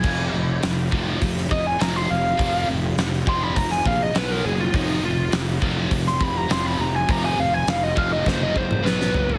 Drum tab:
CC |x---------------|----------------|----------------|----------------|
HH |----o---o---o---|o---o---o---o---|o---o---o---o---|o---o-----------|
SD |----o----o--o---|----oo---o--o---|----o----o--o---|----o---o---oo--|
T1 |----------------|----------------|----------------|---------o------|
T2 |----------------|----------------|----------------|-----------o----|
FT |----------------|----------------|----------------|--------------oo|
BD |o-----o-o-o-----|o-----o-o-o-----|o-----o-o-o-----|o-----o-o-o-----|